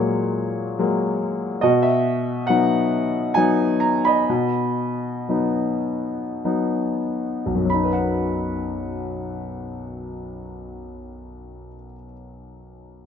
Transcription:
Already playing: A#2 F#3 G#3 A#3 F#4 C#5
0.79 F#3 G#3 A#3
1.61 B2 F#4 D#5
1.82 E5
2.47 F#3 B3 D#4 F#5
3.34 F#3 B3 D#4 G#5
3.80 A#5
4.05 D#5 B5
4.29 B2
5.29 F#3 B3 D#4
6.45 F#3 B3 D#4
7.46 B1
7.55 F#2
7.65 F#3
7.70 B5
7.74 D#4
7.83 B4
7.93 F#5

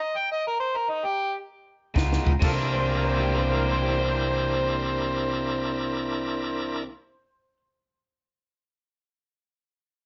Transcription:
0.01 D#5
0.17 G5
0.32 D#5
0.47 A#4
0.60 C5
0.76 A#4
0.89 D#4
1.05 G4
1.94 C#2 C#3 B3 D#4 F4, kick, snare
2.13 snare
2.23 C#2 D#4 F4 B4, kick
2.40 C2 C3 E3 A#3 D4 E4 F4 A4 A#4 C5, kick, crash
2.44 D4
2.74 C5
2.89 A#4
3.04 C5
3.19 G4
3.34 C5
3.52 A#4
3.66 C5
3.82 G4
3.98 C5

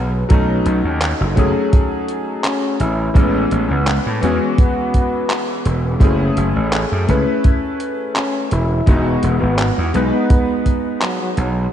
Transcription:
Already playing: B1 G#3 B3 D#4 B4
0.29 B1 F#3 A3 C#4 D#4, kick, closed hi-hat
0.66 B1, closed hi-hat
0.84 D#2
1.02 clap, closed hi-hat
1.21 F#1
1.36 F#1 F#3 A3 C#4 G#4, kick, closed hi-hat
1.73 kick, closed hi-hat
2.08 closed hi-hat
2.44 C#4, clap, closed hi-hat
2.80 A1 E4, closed hi-hat
3.14 A1 E3 G#3 B3 C#4, kick, closed hi-hat
3.51 A1, closed hi-hat
3.70 C#2 B3
3.87 clap, closed hi-hat
4.06 A2
4.21 E2 E3 G#3 B3 C#4 F#4, closed hi-hat
4.42 C#4
4.58 B3, kick, closed hi-hat
4.94 kick, closed hi-hat
5.30 clap, closed hi-hat
5.65 E1, closed hi-hat
6.00 F#1 A3 C#4 E4 G#4, kick, closed hi-hat
6.37 F#1, closed hi-hat
6.56 A1
6.73 clap, closed hi-hat
6.92 F#2
7.07 C#2 A3 C#4 E4 B4, kick, closed hi-hat
7.44 kick, closed hi-hat
7.80 closed hi-hat
8.16 C#4, clap, closed hi-hat
8.51 E1 E4, closed hi-hat
8.86 E1 G#3 B3 D#4 F#4, kick, closed hi-hat
9.23 E1, closed hi-hat
9.42 G#1 B3
9.59 clap, closed hi-hat
9.78 E2
9.94 B1 G#3 B3 D#4 B4, closed hi-hat
10.13 B3
10.30 kick, closed hi-hat
10.66 kick, closed hi-hat
11.01 F#3, clap, closed hi-hat
11.21 F#3
11.37 B1 F#3, closed hi-hat

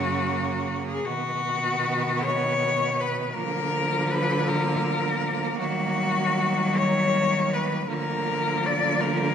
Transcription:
Already playing: F#2 C#3 A#3 F#4
0.88 G#4
1.04 B2 D#3 B3 F#4
2.24 C#5
3.00 B4
3.34 D3 F3 A#3 A#4
4.11 B4
4.48 A#4
5.58 D#3 F#3 F#4
6.77 C#5
7.53 B4
7.89 D3 F3 A#3 A#4
8.66 D5
9.01 A#4

